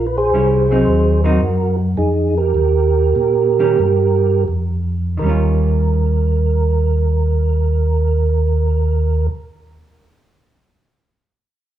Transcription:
Already playing: A#1
0.07 B4
0.18 G#4 C5
0.33 C2 G3 C#4 E4
0.71 F#3 C4 D#4
0.86 D#2
1.24 F#3 C4 D#4 F#4 A#4
1.41 F#2
1.97 F2 D#4 G#4
2.38 G4 A#4
2.55 D#2
3.16 A#2
3.59 D#3 A#3 C#4 G4
3.79 G2
4.48 F2
5.17 D#2 D#3 A#4
5.22 G3 C#4
5.29 F4

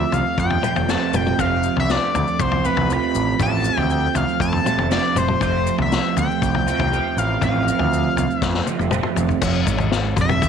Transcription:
Already playing: F2 C3 F3 A3 C4 F4 E5
0.12 C2 F5, floor tom, maracas
0.38 F2 G5, kick, maracas
0.50 floor tom
0.61 F2 C3 F3 A3 C4 F4, mid tom, maracas
0.76 F1, floor tom, maracas
0.86 F2 C3 F3 A3 C4 F4 A5, snare, maracas
1.13 F1 G5, mid tom, maracas
1.27 mid tom, maracas
1.37 F1 F2 C3 F3 A3 C4 F4 F5, kick, floor tom, maracas
1.63 maracas
1.76 C2 E5, floor tom
1.89 D5, snare, maracas
2.15 D2, floor tom, maracas
2.27 maracas
2.40 C2 C5, kick, maracas
2.51 floor tom
2.64 F2 C3 F3 A3 C4 F4 B4, maracas
2.77 C2, floor tom
2.88 F2 C3 F3 A3 C4 F4, maracas
2.92 B5
3.15 A1, maracas
3.39 A1 F2 C3 F3 A3 C4 F4 A5, kick, floor tom, maracas
3.64 maracas
3.77 D2 G5, floor tom
3.90 G5, maracas
4.15 C2 F5, floor tom, maracas
4.29 maracas
4.40 F2 A5, kick, maracas
4.53 floor tom
4.64 F2 C3 F3 A3 C4 F4, mid tom, maracas
4.78 F1, floor tom
4.89 F2 C3 F3 A3 C4 F4 D5, snare, maracas
5.15 F1 C5, mid tom, maracas
5.28 mid tom
5.39 F1 F2 C3 F3 A3 C4 F4 C5, kick, floor tom, maracas
5.67 maracas
5.78 C2 E5, floor tom
5.92 snare, maracas
6.16 D2 G5, floor tom, maracas
6.31 maracas
6.42 C2, kick, maracas
6.55 floor tom
6.67 F2 C3 F3 A3 C4 F4, maracas
6.79 C2, floor tom
6.90 F2 C3 F3 A3 C4 F4, maracas
7.17 A1 F5, maracas
7.41 A1 F2 C3 F3 A3 C4 F5, kick, floor tom, maracas
7.46 F4
7.68 maracas
7.79 D2, floor tom
7.93 maracas
8.16 C2, floor tom, maracas
8.31 maracas
8.37 E5
8.42 F2, kick, snare, maracas
8.54 snare
8.66 F2 C3 F3 A3 C4 F4, high tom, maracas
8.79 F1, high tom, maracas
8.91 F2 C3 F3 A3 C4 F4, mid tom, maracas
9.03 mid tom
9.16 F1, floor tom, maracas
9.29 floor tom, maracas
9.41 F1 F2 F3 C4 F4 A4, kick, floor tom, crash, maracas
9.67 G#1 G#2, kick, maracas
9.78 floor tom, maracas
9.92 snare, maracas
10.16 F1 F2, kick, mid tom, maracas
10.21 E5
10.29 floor tom, mid tom, maracas
10.42 D#2 D#3, kick, maracas

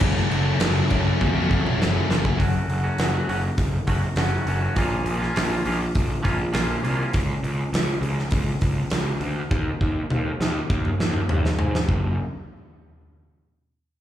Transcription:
0.00 F#1 F#2 C#3 F#3 A3 C#4, kick, crash
0.16 F#3 A3 C#4
0.31 F#1 C#3 F#3 A3 C#4, crash
0.60 F#1 F#2 C#3 F#3 A3 C#4, snare, crash
0.90 F#1 C#3 F#3 A3 C#4, kick, crash
1.06 F#3 A3 C#4
1.21 F2, kick, high tom
1.35 F#3 A3 C#4
1.50 C#3 F#3 A3 C#4, kick
1.66 F#3 A3 C#4, mid tom
1.78 F#1 F#2 C#3 F#3 A3, snare
1.82 C#4
2.09 F#1 C#3 F#3 A3 C#4, snare
2.25 F#3 A3 C#4, kick
2.39 F#1 F#2 C#3 F#3 A3 C#4 F#4, kick, open hi-hat
2.68 F#1, open hi-hat
2.84 F#3 A3 C#4 F#4
2.98 F#1 F#2 C#3 F#3 A3 C#4 F#4, snare, open hi-hat
3.14 F#3 A3 C#4 F#4
3.28 F#1 F#3 A3 C#4 F#4, open hi-hat
3.43 muted clean electric guitar stroke
3.58 F#1, kick, open hi-hat
3.87 F#1 F#3 A3 C#4 F#4, kick, open hi-hat
4.03 muted clean electric guitar stroke
4.16 F#1 F#2 C#3 F#3 A3 C#4 F#4, snare, open hi-hat
4.46 F#1 F#3 A3 C#4 F#4, open hi-hat
4.61 F#3 A3 C#4 F#4
4.76 A#1 A#2 F3 A#3 C#4 F4, kick, open hi-hat
5.04 A#1, open hi-hat
5.20 A#3 C#4 F4, snare
5.35 A#1 A#2 F3 A#3 C#4 F4, snare, open hi-hat
5.50 A#3 C#4 F4
5.65 A#1 F3 A#3 C#4 F4, open hi-hat
5.79 muted clean electric guitar stroke
5.95 A#1, kick, open hi-hat
6.23 A#1 F3 A#3 C#4 F4, kick, open hi-hat
6.38 muted clean electric guitar stroke
6.53 A#1 A#2 F3 A#3 C#4 F4, snare, open hi-hat
6.82 C2 F3 A#3 C#4 F4, open hi-hat
6.97 A#3 C#4 F4
7.13 C#2, kick, open hi-hat
7.43 C#2, open hi-hat
7.73 C#2, snare, open hi-hat
8.01 C#2, open hi-hat
8.19 snare
8.31 C#2, kick, open hi-hat
8.61 C#2, kick, open hi-hat
8.90 C#2, snare, open hi-hat
9.20 D2, open hi-hat
9.51 D#2, kick
9.81 D#2, kick
10.10 D#2, mid tom
10.40 D#2, snare
10.70 D#2, kick
10.85 mid tom
11.00 D#2, snare
11.13 mid tom
11.29 D#2, floor tom
11.45 snare
11.59 G#2, floor tom
11.75 snare
11.88 F#1, kick

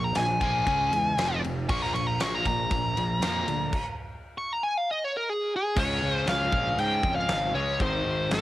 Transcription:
Already playing: A#1 A#2 F3
0.04 A#5
0.14 A#1 A#2 F3 G#5, snare, ride
0.41 A#1 A#2 F3 A#3 G#5, kick, ride
0.67 C#2 C#3 G#3 C#4, kick, ride
0.91 E2 C#3 G#3, ride
1.17 F1 F2 C3 F3, snare, ride
1.44 F1 F2 C3, ride
1.69 A#1 A#2 F3 A#3 C#6, kick, crash
1.82 A#5, snare
1.94 A#1 A#2 F3 C#6, ride
2.07 A#5
2.20 A#1 A#2 F3 A#3 C#6, snare, ride
2.35 A#5
2.45 A#1 A#2 F3 A#5, kick, ride
2.70 A#1 A#2 F3, kick, ride
2.97 A#1 A#2 F3, ride
3.20 F2 A#2 F3 A#3, snare, ride
3.47 D2 A#2 F3, ride
3.73 kick, crash
4.38 C#6
4.53 A#5
4.63 G#5
4.78 F5
4.91 D#5
5.04 C#5
5.17 A#4
5.29 G#4
5.56 G#4
5.76 C#2 C#3 G#3 C#4 C#5, kick, crash
6.02 C#2
6.13 C5
6.27 C#2 F5, snare, crash
6.52 A#1, kick
6.78 G#2 G5, crash
7.03 F2, kick
7.16 F5
7.29 G#1, snare, crash
7.54 C#2 C#3 G#3 C#4 C#5
7.80 G#1 G#2 D#3 G#3 C5, kick, crash
8.05 G#1
8.30 G#1 A#4, snare, crash

